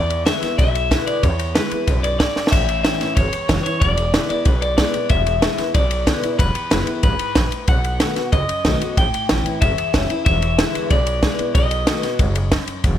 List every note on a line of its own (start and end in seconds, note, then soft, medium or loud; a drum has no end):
0.00 0.28 E2 medium
0.00 0.55 E2 medium
0.00 0.25 D5 medium
0.10 ride medium
0.25 0.41 D3 medium
0.25 0.42 G#3 medium
0.25 0.42 B3 medium
0.25 0.41 E4 medium
0.25 0.56 E5 medium
0.25 snare loud
0.25 ride medium
0.42 0.58 B3 medium
0.42 0.58 E4 medium
0.42 muted upright bass stroke medium
0.42 snare soft
0.42 ride medium
0.58 0.93 B1 medium
0.58 1.20 B2 medium
0.58 1.06 E5 loud
0.58 kick loud
0.58 ride medium
0.75 ride medium
0.91 1.21 D3 medium
0.91 1.22 G#3 medium
0.91 1.22 B3 medium
0.91 1.22 E4 loud
0.91 kick medium
0.91 snare loud
0.91 ride medium
1.07 1.23 D5 medium
1.07 muted upright bass stroke medium
1.07 ride medium
1.23 1.57 E2 loud
1.23 1.85 E2 medium
1.23 1.55 C#5 medium
1.23 kick loud
1.23 ride medium
1.39 ride medium
1.55 1.71 D3 medium
1.55 1.71 G#3 medium
1.55 1.71 B3 loud
1.55 1.71 E4 loud
1.55 2.05 B4 medium
1.55 snare loud
1.55 ride medium
1.71 1.88 B3 soft
1.71 1.87 E4 medium
1.71 muted upright bass stroke medium
1.71 ride medium
1.87 2.21 B1 medium
1.87 2.19 F#2 medium
1.87 kick loud
1.87 ride medium
2.03 2.18 D5 medium
2.03 ride medium
2.19 2.51 G#2 medium
2.19 2.51 D5 loud
2.19 kick medium
2.19 snare loud
2.19 ride medium
2.36 muted upright bass stroke medium
2.36 snare medium
2.47 2.81 E5 medium
2.47 snare loud
2.52 2.86 A1 medium
2.52 3.14 A2 medium
2.52 kick loud
2.52 ride medium
2.52 crash medium
2.69 ride medium
2.83 3.00 E3 medium
2.83 3.00 G3 medium
2.83 3.00 C#4 medium
2.83 3.00 E4 loud
2.83 3.15 E5 medium
2.83 snare loud
2.83 ride medium
3.01 3.17 C#4 medium
3.01 3.16 E4 medium
3.01 muted upright bass stroke medium
3.01 snare soft
3.01 ride medium
3.15 3.30 G1 medium
3.15 3.78 E2 medium
3.15 3.61 C#5 loud
3.15 kick loud
3.15 ride medium
3.33 muted upright bass stroke medium
3.33 ride medium
3.49 3.63 F#1 medium
3.49 3.64 E3 medium
3.49 3.64 G3 medium
3.49 3.65 C#4 medium
3.49 3.64 E4 medium
3.49 kick medium
3.49 snare loud
3.49 ride medium
3.63 3.81 C#4 soft
3.63 3.80 E4 medium
3.63 3.80 C#5 medium
3.63 muted upright bass stroke medium
3.63 ride medium
3.80 4.15 E1 medium
3.80 4.43 E2 medium
3.80 4.28 D5 loud
3.80 kick loud
3.80 ride medium
3.97 ride medium
4.14 4.29 D3 medium
4.14 4.29 G#3 medium
4.14 4.30 B3 medium
4.14 4.29 E4 medium
4.14 snare loud
4.14 ride medium
4.29 4.46 B3 soft
4.29 4.45 E4 medium
4.29 4.46 D5 medium
4.29 muted upright bass stroke medium
4.29 ride medium
4.45 4.80 B1 medium
4.45 5.07 B2 medium
4.45 4.62 B4 medium
4.45 kick loud
4.45 ride medium
4.62 4.76 D5 loud
4.62 ride medium
4.77 4.93 D3 medium
4.77 4.94 G#3 medium
4.77 4.94 B3 loud
4.77 4.93 E4 loud
4.77 5.10 D5 loud
4.77 kick medium
4.77 snare loud
4.77 ride medium
4.94 5.10 B3 medium
4.94 5.10 E4 medium
4.94 muted upright bass stroke medium
4.94 ride medium
5.09 5.44 E1 medium
5.09 5.72 E2 medium
5.09 5.74 E5 loud
5.09 kick loud
5.09 ride medium
5.27 ride medium
5.42 5.58 D3 medium
5.42 5.58 G#3 medium
5.42 5.58 B3 medium
5.42 5.58 E4 medium
5.42 snare loud
5.42 ride medium
5.58 5.75 B3 soft
5.58 5.74 E4 medium
5.58 muted upright bass stroke medium
5.58 snare soft
5.58 ride medium
5.74 6.08 B1 medium
5.74 6.36 B2 medium
5.74 6.38 D5 loud
5.74 kick loud
5.74 ride medium
5.91 ride medium
6.07 6.22 D3 medium
6.07 6.22 G#3 loud
6.07 6.23 B3 medium
6.07 6.22 E4 medium
6.07 kick medium
6.07 snare loud
6.07 ride medium
6.23 6.39 B3 medium
6.23 6.38 E4 medium
6.23 muted upright bass stroke medium
6.23 ride medium
6.39 6.50 E1 loud
6.39 7.00 E2 medium
6.39 7.02 B4 medium
6.39 kick loud
6.39 ride medium
6.55 muted upright bass stroke medium
6.55 ride medium
6.70 6.85 F#1 medium
6.70 6.86 D3 medium
6.70 6.86 G#3 medium
6.70 6.87 B3 medium
6.70 6.85 E4 medium
6.70 snare loud
6.70 ride medium
6.87 7.03 B3 soft
6.87 7.02 E4 medium
6.87 muted upright bass stroke medium
6.87 ride medium
7.03 7.17 G#1 medium
7.03 7.34 G#2 medium
7.03 7.64 B4 medium
7.03 kick loud
7.03 ride medium
7.19 muted upright bass stroke medium
7.19 ride medium
7.35 7.49 A1 medium
7.35 7.66 A2 medium
7.35 kick medium
7.35 snare loud
7.35 ride medium
7.52 muted upright bass stroke medium
7.52 ride medium
7.68 8.02 B1 medium
7.68 8.29 B2 medium
7.68 8.32 F#5 loud
7.68 kick loud
7.68 ride medium
7.84 ride medium
8.00 8.16 D#3 medium
8.00 8.16 A3 medium
8.00 8.16 B3 medium
8.00 8.14 F#4 loud
8.00 snare loud
8.00 ride medium
8.16 8.32 B3 soft
8.16 8.31 F#4 medium
8.16 muted upright bass stroke medium
8.16 snare soft
8.16 ride medium
8.32 8.46 C#2 medium
8.32 8.94 F#2 medium
8.32 8.97 D#5 loud
8.32 kick loud
8.32 ride medium
8.49 muted upright bass stroke medium
8.49 ride medium
8.65 8.78 B1 medium
8.65 8.80 D#3 medium
8.65 8.81 A3 medium
8.65 8.81 B3 loud
8.65 8.80 F#4 loud
8.65 kick medium
8.65 snare loud
8.65 ride medium
8.81 8.97 B3 soft
8.81 8.96 F#4 medium
8.81 muted upright bass stroke medium
8.81 ride medium
8.97 9.09 A1 medium
8.97 9.58 A2 medium
8.97 9.61 G5 loud
8.97 kick loud
8.97 ride medium
9.14 muted upright bass stroke medium
9.14 ride medium
9.29 9.43 A1 medium
9.29 9.45 E3 medium
9.29 9.45 G3 medium
9.29 9.45 C#4 medium
9.29 9.44 E4 medium
9.29 snare loud
9.29 ride medium
9.45 9.62 C#4 soft
9.45 9.61 E4 medium
9.45 muted upright bass stroke medium
9.45 ride medium
9.61 9.76 G1 loud
9.61 10.23 E2 medium
9.61 10.24 E5 loud
9.61 kick loud
9.61 ride medium
9.78 muted upright bass stroke medium
9.78 ride medium
9.93 10.08 F#1 medium
9.93 10.09 E3 medium
9.93 10.09 G3 medium
9.93 10.10 C#4 loud
9.93 10.09 E4 loud
9.93 kick medium
9.93 snare loud
9.93 ride medium
10.10 10.26 C#4 soft
10.10 10.26 E4 medium
10.10 muted upright bass stroke medium
10.10 ride medium
10.25 10.60 E1 medium
10.25 10.87 E2 medium
10.25 10.90 E5 loud
10.25 kick loud
10.25 ride medium
10.42 ride medium
10.58 10.89 D3 medium
10.58 10.89 G#3 medium
10.58 10.90 B3 loud
10.58 10.90 E4 medium
10.58 snare loud
10.58 ride medium
10.75 muted upright bass stroke medium
10.75 ride medium
10.90 11.24 B1 loud
10.90 11.52 B2 medium
10.90 11.54 D5 medium
10.90 kick loud
10.90 ride medium
11.07 ride medium
11.23 11.38 D3 medium
11.23 11.39 G#3 medium
11.23 11.39 B3 medium
11.23 11.38 E4 medium
11.23 kick medium
11.23 snare loud
11.23 ride medium
11.39 11.55 B3 soft
11.39 11.54 E4 medium
11.39 muted upright bass stroke medium
11.39 ride medium
11.55 11.89 B1 medium
11.55 12.16 B2 medium
11.55 12.64 D#5 medium
11.55 kick loud
11.55 ride medium
11.71 ride medium
11.87 12.03 D#3 medium
11.87 12.03 A3 medium
11.87 12.03 B3 medium
11.87 12.02 F#4 medium
11.87 snare loud
11.87 ride loud
12.03 12.20 B3 soft
12.03 12.19 F#4 medium
12.03 muted upright bass stroke medium
12.03 snare soft
12.03 ride medium
12.19 12.54 F#1 medium
12.19 12.50 G#2 medium
12.19 kick loud
12.19 ride medium
12.35 ride medium
12.52 12.83 F#2 medium
12.52 kick medium
12.52 snare loud
12.52 ride medium
12.67 muted upright bass stroke medium
12.67 ride medium
12.84 12.98 E1 medium
12.84 12.98 E2 medium
12.84 kick loud
12.84 ride medium